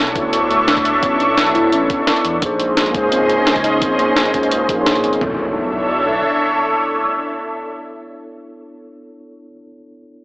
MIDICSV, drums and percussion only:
0, 0, Header, 1, 2, 480
1, 0, Start_track
1, 0, Tempo, 348837
1, 1412, Time_signature, 4, 2, 24, 8
1, 14097, End_track
2, 0, Start_track
2, 0, Title_t, "Drums"
2, 98, Note_on_c, 9, 42, 32
2, 214, Note_off_c, 9, 42, 0
2, 214, Note_on_c, 9, 36, 96
2, 214, Note_on_c, 9, 42, 60
2, 351, Note_off_c, 9, 42, 0
2, 352, Note_off_c, 9, 36, 0
2, 453, Note_on_c, 9, 42, 81
2, 591, Note_off_c, 9, 42, 0
2, 695, Note_on_c, 9, 42, 59
2, 833, Note_off_c, 9, 42, 0
2, 933, Note_on_c, 9, 38, 114
2, 933, Note_on_c, 9, 42, 84
2, 1057, Note_off_c, 9, 42, 0
2, 1057, Note_on_c, 9, 42, 34
2, 1059, Note_on_c, 9, 36, 57
2, 1071, Note_off_c, 9, 38, 0
2, 1172, Note_off_c, 9, 42, 0
2, 1172, Note_on_c, 9, 42, 59
2, 1196, Note_off_c, 9, 36, 0
2, 1310, Note_off_c, 9, 42, 0
2, 1413, Note_on_c, 9, 42, 86
2, 1414, Note_on_c, 9, 36, 107
2, 1551, Note_off_c, 9, 36, 0
2, 1551, Note_off_c, 9, 42, 0
2, 1653, Note_on_c, 9, 42, 58
2, 1790, Note_off_c, 9, 42, 0
2, 1892, Note_on_c, 9, 38, 111
2, 1892, Note_on_c, 9, 42, 89
2, 2018, Note_off_c, 9, 42, 0
2, 2018, Note_on_c, 9, 42, 33
2, 2030, Note_off_c, 9, 38, 0
2, 2133, Note_off_c, 9, 42, 0
2, 2133, Note_on_c, 9, 42, 58
2, 2270, Note_off_c, 9, 42, 0
2, 2373, Note_on_c, 9, 42, 88
2, 2511, Note_off_c, 9, 42, 0
2, 2612, Note_on_c, 9, 42, 61
2, 2613, Note_on_c, 9, 36, 97
2, 2750, Note_off_c, 9, 42, 0
2, 2751, Note_off_c, 9, 36, 0
2, 2851, Note_on_c, 9, 38, 104
2, 2851, Note_on_c, 9, 42, 84
2, 2977, Note_off_c, 9, 42, 0
2, 2977, Note_on_c, 9, 42, 32
2, 2989, Note_off_c, 9, 38, 0
2, 3090, Note_off_c, 9, 42, 0
2, 3090, Note_on_c, 9, 42, 60
2, 3228, Note_off_c, 9, 42, 0
2, 3331, Note_on_c, 9, 42, 87
2, 3333, Note_on_c, 9, 36, 102
2, 3468, Note_off_c, 9, 42, 0
2, 3471, Note_off_c, 9, 36, 0
2, 3571, Note_on_c, 9, 42, 61
2, 3709, Note_off_c, 9, 42, 0
2, 3812, Note_on_c, 9, 38, 102
2, 3812, Note_on_c, 9, 42, 89
2, 3938, Note_off_c, 9, 42, 0
2, 3938, Note_on_c, 9, 42, 35
2, 3950, Note_off_c, 9, 38, 0
2, 4052, Note_off_c, 9, 42, 0
2, 4052, Note_on_c, 9, 42, 60
2, 4053, Note_on_c, 9, 36, 93
2, 4190, Note_off_c, 9, 36, 0
2, 4190, Note_off_c, 9, 42, 0
2, 4292, Note_on_c, 9, 42, 86
2, 4430, Note_off_c, 9, 42, 0
2, 4534, Note_on_c, 9, 42, 61
2, 4671, Note_off_c, 9, 42, 0
2, 4771, Note_on_c, 9, 38, 103
2, 4771, Note_on_c, 9, 42, 85
2, 4894, Note_off_c, 9, 42, 0
2, 4894, Note_on_c, 9, 42, 35
2, 4898, Note_on_c, 9, 36, 53
2, 4909, Note_off_c, 9, 38, 0
2, 5010, Note_off_c, 9, 42, 0
2, 5010, Note_on_c, 9, 42, 62
2, 5036, Note_off_c, 9, 36, 0
2, 5147, Note_off_c, 9, 42, 0
2, 5252, Note_on_c, 9, 42, 85
2, 5254, Note_on_c, 9, 36, 103
2, 5389, Note_off_c, 9, 42, 0
2, 5392, Note_off_c, 9, 36, 0
2, 5491, Note_on_c, 9, 42, 61
2, 5628, Note_off_c, 9, 42, 0
2, 5730, Note_on_c, 9, 38, 105
2, 5730, Note_on_c, 9, 42, 89
2, 5856, Note_off_c, 9, 42, 0
2, 5856, Note_on_c, 9, 42, 34
2, 5868, Note_off_c, 9, 38, 0
2, 5972, Note_off_c, 9, 42, 0
2, 5972, Note_on_c, 9, 42, 63
2, 5974, Note_on_c, 9, 36, 51
2, 6098, Note_off_c, 9, 42, 0
2, 6098, Note_on_c, 9, 42, 35
2, 6112, Note_off_c, 9, 36, 0
2, 6212, Note_off_c, 9, 42, 0
2, 6212, Note_on_c, 9, 42, 89
2, 6350, Note_off_c, 9, 42, 0
2, 6453, Note_on_c, 9, 42, 62
2, 6454, Note_on_c, 9, 36, 90
2, 6591, Note_off_c, 9, 42, 0
2, 6592, Note_off_c, 9, 36, 0
2, 6692, Note_on_c, 9, 38, 107
2, 6692, Note_on_c, 9, 42, 91
2, 6817, Note_off_c, 9, 42, 0
2, 6817, Note_on_c, 9, 42, 35
2, 6830, Note_off_c, 9, 38, 0
2, 6932, Note_off_c, 9, 42, 0
2, 6932, Note_on_c, 9, 42, 62
2, 7057, Note_off_c, 9, 42, 0
2, 7057, Note_on_c, 9, 42, 33
2, 7174, Note_on_c, 9, 36, 91
2, 7174, Note_on_c, 9, 43, 90
2, 7195, Note_off_c, 9, 42, 0
2, 7311, Note_off_c, 9, 43, 0
2, 7312, Note_off_c, 9, 36, 0
2, 14097, End_track
0, 0, End_of_file